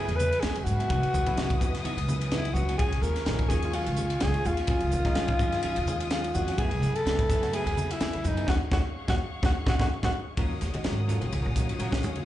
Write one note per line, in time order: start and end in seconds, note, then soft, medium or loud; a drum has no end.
0.00 0.43 C#3 medium
0.00 0.43 F#3 medium
0.00 0.87 A3 medium
0.00 0.43 B3 medium
0.00 0.43 E4 medium
0.00 0.17 G#4 medium
0.00 2.75 E5 medium
0.00 0.88 G#5 medium
0.00 0.88 B5 medium
0.08 0.30 E2 medium
0.08 muted clean electric guitar stroke soft
0.08 ride medium
0.16 0.42 B4 loud
0.16 hi-hat pedal medium
0.20 muted clean electric guitar stroke soft
0.20 high conga medium
0.32 ride medium
0.40 0.55 E2 medium
0.40 0.56 A3 medium
0.40 0.55 B3 medium
0.40 0.55 E4 medium
0.40 0.58 G#4 medium
0.40 0.55 G#4 medium
0.40 snare medium
0.40 ride medium
0.55 0.91 C#3 medium
0.55 0.91 F#3 medium
0.55 0.91 B3 medium
0.55 0.91 C#4 medium
0.55 0.65 G#4 medium
0.55 muted clean electric guitar stroke soft
0.55 muted upright bass stroke soft
0.55 ride medium
0.64 0.92 G#2 medium
0.64 2.07 F#4 loud
0.64 muted clean electric guitar stroke soft
0.64 hi-hat pedal medium
0.80 0.89 B3 soft
0.80 0.90 E4 soft
0.80 0.90 G#4 soft
0.80 ride soft
0.90 1.02 C#2 loud
0.90 1.03 E3 medium
0.90 1.03 B3 medium
0.90 1.03 D#4 medium
0.90 1.02 F#4 medium
0.90 2.79 B4 medium
0.90 6.56 G#5 medium
0.90 2.78 D#6 medium
0.90 kick loud
0.90 ride medium
1.03 1.13 B1 medium
1.03 muted clean electric guitar stroke soft
1.03 ride medium
1.13 1.26 C#2 medium
1.13 1.25 C#3 medium
1.13 1.25 F#3 medium
1.13 1.25 B3 medium
1.13 1.25 E4 medium
1.13 muted clean electric guitar stroke soft
1.13 hi-hat pedal medium
1.13 high conga medium
1.13 low conga medium
1.26 1.96 C#3 medium
1.26 1.96 F#3 medium
1.26 1.96 B3 medium
1.26 1.96 E4 medium
1.26 muted clean electric guitar stroke soft
1.26 kick medium
1.26 ride medium
1.37 1.49 C#3 medium
1.37 1.53 E3 medium
1.37 1.53 B3 medium
1.37 1.53 D#4 medium
1.37 1.53 F#4 medium
1.37 snare medium
1.37 ride medium
1.50 kick medium
1.50 ride medium
1.50 high conga medium
1.60 1.83 E2 medium
1.60 1.74 E3 medium
1.60 1.73 B3 medium
1.60 1.73 D#4 medium
1.60 1.73 F#4 medium
1.60 kick medium
1.60 hi-hat pedal medium
1.60 low conga medium
1.74 muted clean electric guitar stroke soft
1.74 snare soft
1.74 ride medium
1.84 1.98 E3 medium
1.84 1.97 B3 medium
1.84 1.97 D#4 medium
1.84 1.96 F#4 medium
1.84 muted upright bass stroke soft
1.84 ride medium
1.84 high conga medium
1.97 2.52 C#2 medium
1.97 muted clean electric guitar stroke medium
1.97 ride medium
2.08 2.29 C#3 medium
2.08 2.29 F#3 medium
2.08 2.29 B3 medium
2.08 2.29 E4 medium
2.08 muted clean electric guitar stroke soft
2.08 hi-hat pedal medium
2.08 high conga medium
2.21 ride medium
2.31 2.52 C#3 medium
2.31 2.45 E3 medium
2.31 2.53 F#3 medium
2.31 2.44 B3 soft
2.31 2.53 B3 medium
2.31 2.44 D#4 medium
2.31 2.53 D#4 medium
2.31 2.55 E4 medium
2.31 2.43 F#4 medium
2.31 snare medium
2.31 ride medium
2.31 low conga medium
2.45 muted clean electric guitar stroke soft
2.45 ride medium
2.54 2.79 C#2 medium
2.54 2.80 C#3 medium
2.54 2.80 F#3 medium
2.54 2.80 B3 medium
2.54 2.80 E4 medium
2.54 2.77 F#4 medium
2.54 muted clean electric guitar stroke soft
2.54 hi-hat pedal medium
2.54 low conga medium
2.69 2.79 B3 soft
2.69 2.79 D#4 soft
2.69 2.80 F#4 medium
2.69 ride medium
2.78 2.91 D#2 loud
2.78 2.93 F#3 medium
2.78 2.92 C#4 medium
2.78 2.92 F4 medium
2.78 3.04 G#4 medium
2.78 6.55 G#4 medium
2.78 2.92 G#4 medium
2.78 6.55 F5 medium
2.78 4.68 C#6 medium
2.78 kick loud
2.78 ride medium
2.91 3.01 A#1 medium
2.91 muted clean electric guitar stroke soft
2.91 ride medium
3.02 3.14 D#2 medium
3.02 3.24 D#3 medium
3.02 3.24 G#3 medium
3.02 3.24 C#4 medium
3.02 3.24 F4 medium
3.02 3.50 A#4 loud
3.02 muted clean electric guitar stroke soft
3.02 hi-hat pedal medium
3.16 muted clean electric guitar stroke soft
3.16 snare soft
3.16 ride medium
3.26 3.48 A#1 medium
3.26 3.57 D#3 medium
3.26 3.42 F#3 medium
3.26 3.58 G#3 medium
3.26 3.42 C#4 medium
3.26 3.57 C#4 medium
3.26 3.57 D#4 medium
3.26 3.43 F4 medium
3.26 3.43 G#4 medium
3.26 snare medium
3.26 ride medium
3.39 kick medium
3.39 ride medium
3.39 high conga medium
3.48 3.84 D#2 medium
3.48 3.63 F#3 medium
3.48 3.63 C#4 medium
3.48 3.63 F4 medium
3.48 3.76 G#4 medium
3.48 3.62 G#4 medium
3.48 kick medium
3.48 snare soft
3.48 hi-hat pedal medium
3.48 low conga medium
3.62 4.22 D#3 medium
3.62 4.22 G#3 medium
3.62 4.22 C#4 medium
3.62 4.22 F4 medium
3.62 muted clean electric guitar stroke soft
3.62 ride medium
3.73 3.87 F#3 medium
3.73 3.86 C#4 medium
3.73 3.86 F4 medium
3.73 4.24 F4 medium
3.73 3.86 G#4 medium
3.73 ride medium
3.86 4.09 C#2 medium
3.86 muted clean electric guitar stroke soft
3.86 ride medium
3.96 muted clean electric guitar stroke soft
3.96 hi-hat pedal medium
3.96 high conga medium
4.10 ride medium
4.20 4.34 C#2 medium
4.20 4.35 F#3 medium
4.20 4.34 C#4 medium
4.20 4.34 F4 medium
4.20 4.34 G#4 medium
4.20 4.48 G#4 loud
4.20 snare loud
4.20 ride medium
4.34 4.84 D#3 medium
4.34 4.84 G#3 medium
4.34 4.84 C#4 medium
4.34 4.84 F4 medium
4.34 muted clean electric guitar stroke soft
4.34 muted upright bass stroke soft
4.34 ride medium
4.44 4.68 D#2 medium
4.44 6.11 F4 loud
4.44 muted clean electric guitar stroke soft
4.44 hi-hat pedal medium
4.44 low conga medium
4.57 4.68 C#4 soft
4.57 4.69 F4 soft
4.57 4.69 G#4 soft
4.57 ride medium
4.67 4.81 F#2 medium
4.67 4.82 F#3 medium
4.67 4.82 C#4 medium
4.67 4.81 F4 medium
4.67 4.81 G#4 medium
4.67 6.56 D#6 medium
4.67 kick loud
4.67 ride medium
4.80 4.92 C#2 medium
4.80 muted clean electric guitar stroke soft
4.80 ride medium
4.91 5.04 D#2 medium
4.91 5.04 D#3 medium
4.91 5.04 G#3 medium
4.91 5.04 C#4 medium
4.91 5.04 D#4 medium
4.91 muted clean electric guitar stroke soft
4.91 hi-hat pedal medium
5.05 5.75 D#3 medium
5.05 5.75 G#3 medium
5.05 5.75 C#4 medium
5.05 5.75 D#4 medium
5.05 muted clean electric guitar stroke medium
5.05 kick medium
5.05 snare soft
5.05 ride medium
5.15 5.29 D#3 medium
5.15 5.32 F#3 medium
5.15 5.33 C#4 medium
5.15 5.33 F4 medium
5.15 5.33 G#4 medium
5.15 snare loud
5.15 ride medium
5.28 kick medium
5.28 ride medium
5.28 high conga medium
5.39 5.61 F#2 medium
5.39 5.53 F#3 medium
5.39 5.54 C#4 medium
5.39 5.53 F4 medium
5.39 5.53 G#4 medium
5.39 kick medium
5.39 hi-hat pedal medium
5.39 low conga medium
5.52 muted clean electric guitar stroke soft
5.52 snare soft
5.52 ride medium
5.63 5.77 F#3 medium
5.63 5.76 C#4 medium
5.63 5.76 F4 loud
5.63 5.75 G#4 medium
5.63 muted upright bass stroke soft
5.63 ride medium
5.76 6.31 D#2 medium
5.76 ride medium
5.87 6.08 D#3 medium
5.87 6.08 G#3 medium
5.87 6.08 C#4 medium
5.87 6.09 G#4 medium
5.87 muted clean electric guitar stroke soft
5.87 hi-hat pedal medium
5.87 high conga medium
6.00 ride medium
6.10 6.32 D#3 medium
6.10 6.24 F#3 medium
6.10 6.32 G#3 medium
6.10 6.23 C#4 medium
6.10 6.32 C#4 medium
6.10 6.32 D#4 medium
6.10 6.35 F4 medium
6.10 6.23 F4 medium
6.10 6.23 G#4 medium
6.10 snare loud
6.10 ride medium
6.24 muted clean electric guitar stroke soft
6.24 ride medium
6.34 6.58 F2 medium
6.34 6.59 D#3 medium
6.34 6.59 G#3 medium
6.34 6.59 C#4 medium
6.34 6.59 F4 medium
6.34 6.60 F#4 loud
6.34 muted clean electric guitar stroke soft
6.34 hi-hat pedal medium
6.48 6.58 C#4 soft
6.48 6.58 F4 soft
6.48 6.58 G#4 soft
6.48 ride medium
6.58 6.74 F#2 loud
6.58 6.72 A3 medium
6.58 8.47 A3 medium
6.58 6.71 B3 medium
6.58 6.71 E4 medium
6.58 6.97 G#4 loud
6.58 6.70 G#4 medium
6.58 8.47 E5 medium
6.58 8.47 G#5 medium
6.58 8.47 B5 medium
6.58 kick loud
6.58 ride medium
6.71 6.81 C#2 medium
6.71 muted clean electric guitar stroke soft
6.71 ride medium
6.82 6.94 F#2 medium
6.82 7.03 C#3 medium
6.82 7.03 F#3 medium
6.82 7.03 B3 medium
6.82 7.03 E4 medium
6.82 muted clean electric guitar stroke soft
6.82 hi-hat pedal medium
6.95 7.54 A4 loud
6.95 muted clean electric guitar stroke soft
6.95 ride medium
7.05 7.27 C#2 medium
7.05 7.37 C#3 medium
7.05 7.37 F#3 medium
7.05 7.21 A3 medium
7.05 7.21 B3 medium
7.05 7.37 B3 medium
7.05 7.37 D#4 medium
7.05 7.21 E4 medium
7.05 7.21 G#4 medium
7.05 snare loud
7.05 ride medium
7.19 kick medium
7.19 ride medium
7.19 high conga medium
7.29 7.63 F#2 medium
7.29 7.42 A3 medium
7.29 7.42 B3 medium
7.29 7.41 E4 medium
7.29 7.41 G#4 medium
7.29 kick medium
7.29 snare soft
7.29 hi-hat pedal medium
7.29 low conga medium
7.42 8.01 C#3 medium
7.42 8.01 F#3 medium
7.42 8.01 B3 medium
7.42 8.01 F#4 medium
7.42 muted clean electric guitar stroke soft
7.42 snare soft
7.42 ride medium
7.53 7.66 A3 medium
7.53 7.66 B3 medium
7.53 7.65 E4 medium
7.53 7.65 G#4 medium
7.53 7.93 G#4 loud
7.53 ride medium
7.66 7.88 E2 medium
7.66 muted clean electric guitar stroke soft
7.66 ride medium
7.77 muted clean electric guitar stroke soft
7.77 hi-hat pedal medium
7.77 high conga medium
7.91 8.29 E4 medium
7.91 ride medium
8.00 8.13 E2 medium
8.00 8.13 A3 medium
8.00 8.12 B3 medium
8.00 8.12 E4 medium
8.00 8.11 G#4 medium
8.00 snare loud
8.00 ride medium
8.12 8.48 C#3 medium
8.12 8.48 F#3 medium
8.12 8.48 B3 medium
8.12 8.48 E4 medium
8.12 muted clean electric guitar stroke soft
8.12 muted upright bass stroke soft
8.12 ride medium
8.23 8.47 F#2 loud
8.23 8.48 D#4 medium
8.23 muted clean electric guitar stroke soft
8.23 hi-hat pedal medium
8.23 low conga medium
8.37 8.47 B3 soft
8.37 8.48 E4 soft
8.37 8.48 G#4 soft
8.37 ride medium
8.48 8.58 D#2 loud
8.48 8.57 A#3 medium
8.48 8.56 C#4 loud
8.48 8.57 C#4 medium
8.48 8.56 D#4 medium
8.48 8.57 D#4 medium
8.48 8.56 F#4 medium
8.48 8.55 F#4 medium
8.48 10.36 G#4 medium
8.48 10.36 F5 medium
8.48 10.36 F#5 medium
8.48 10.36 C#6 medium
8.48 kick medium
8.48 snare medium
8.48 low conga medium
8.71 8.81 D#2 loud
8.71 8.81 A#3 medium
8.71 8.80 C#4 medium
8.71 8.81 C#4 medium
8.71 8.80 D#4 medium
8.71 8.81 D#4 medium
8.71 8.80 F#4 medium
8.71 8.79 F#4 medium
8.71 kick medium
8.71 snare medium
8.71 low conga medium
9.08 9.17 D#2 medium
9.08 9.16 A#3 medium
9.08 9.15 C#4 medium
9.08 9.16 C#4 medium
9.08 9.15 D#4 medium
9.08 9.16 D#4 medium
9.08 9.15 F#4 loud
9.08 9.15 F#4 medium
9.08 kick medium
9.08 snare medium
9.08 low conga medium
9.43 9.52 D#2 medium
9.43 9.52 A#3 medium
9.43 9.51 C#4 medium
9.43 9.52 C#4 loud
9.43 9.51 D#4 medium
9.43 9.51 F#4 medium
9.43 kick medium
9.43 snare medium
9.43 low conga loud
9.66 9.76 D#2 medium
9.66 9.76 A#3 medium
9.66 9.75 C#4 medium
9.66 9.76 C#4 medium
9.66 9.75 D#4 medium
9.66 9.76 D#4 medium
9.66 9.75 F#4 medium
9.66 kick medium
9.66 snare medium
9.66 low conga loud
9.79 9.87 D#2 medium
9.79 9.87 A#3 medium
9.79 9.87 C#4 medium
9.79 9.87 D#4 medium
9.79 9.87 F#4 medium
9.79 9.88 F#4 medium
9.79 kick medium
9.79 snare medium
9.79 low conga medium
10.03 10.11 D#2 medium
10.03 10.11 A#3 medium
10.03 10.11 C#4 medium
10.03 10.11 D#4 medium
10.03 10.11 F#4 medium
10.03 kick medium
10.03 snare medium
10.03 low conga medium
10.37 10.49 D#2 medium
10.37 10.68 D#3 medium
10.37 10.53 F#3 medium
10.37 10.68 G#3 medium
10.37 10.53 C#4 medium
10.37 10.68 C#4 medium
10.37 10.53 F4 medium
10.37 10.68 F#4 medium
10.37 10.53 A#4 medium
10.37 12.25 C#5 medium
10.37 12.25 F5 medium
10.37 12.25 F#5 medium
10.37 12.25 D#6 medium
10.37 kick loud
10.37 ride medium
10.61 10.73 D#2 loud
10.61 muted clean electric guitar stroke soft
10.61 snare soft
10.61 hi-hat pedal medium
10.61 ride medium
10.74 11.13 D#3 medium
10.74 11.13 G#3 medium
10.74 11.13 C#4 medium
10.74 11.13 F#4 medium
10.74 10.86 D#5 medium
10.74 muted clean electric guitar stroke soft
10.74 muted upright bass stroke soft
10.74 ride medium
10.74 high conga medium
10.84 11.19 G#2 medium
10.84 10.98 F#3 medium
10.84 10.96 C#4 medium
10.84 10.96 F4 medium
10.84 10.95 A#4 medium
10.84 10.99 C#5 medium
10.84 snare loud
10.84 ride medium
10.97 11.10 A#4 medium
10.97 muted clean electric guitar stroke soft
11.08 11.21 F#3 medium
11.08 11.20 C#4 medium
11.08 11.20 F4 medium
11.08 11.23 A4 medium
11.08 11.20 A#4 medium
11.08 hi-hat pedal medium
11.08 ride medium
11.08 low conga medium
11.21 11.31 A#1 medium
11.21 11.51 D#3 medium
11.21 11.50 G#3 medium
11.21 11.51 C#4 medium
11.21 11.51 F4 medium
11.21 muted clean electric guitar stroke soft
11.21 ride soft
11.25 11.34 G4 medium
11.32 11.44 C#2 medium
11.32 11.42 G#4 medium
11.32 ride medium
11.32 high conga medium
11.43 11.67 A#1 loud
11.43 11.49 A#4 medium
11.43 muted clean electric guitar stroke soft
11.51 11.57 G#4 medium
11.55 11.96 D#3 medium
11.55 11.69 F#3 medium
11.55 11.96 G#3 medium
11.55 11.68 C#4 medium
11.55 11.96 C#4 medium
11.55 11.68 F4 medium
11.55 11.81 F#4 medium
11.55 11.68 A#4 medium
11.55 kick medium
11.55 hi-hat pedal medium
11.55 ride medium
11.69 11.81 F4 medium
11.69 muted clean electric guitar stroke soft
11.69 ride medium
11.79 12.01 A#1 medium
11.79 11.95 F#3 medium
11.79 11.95 C#4 medium
11.79 11.95 F4 medium
11.79 11.94 F#4 medium
11.79 11.95 A#4 medium
11.79 ride medium
11.92 12.05 A#3 soft
11.92 kick medium
11.92 snare loud
12.03 12.25 D#3 medium
12.03 12.25 G#3 medium
12.03 12.05 C#4 medium
12.03 12.18 C#4 medium
12.03 12.25 F#4 medium
12.03 muted clean electric guitar stroke soft
12.03 hi-hat pedal medium
12.03 ride medium
12.03 low conga medium
12.15 muted clean electric guitar stroke soft
12.15 ride medium
12.15 high conga medium
12.21 12.25 F4 medium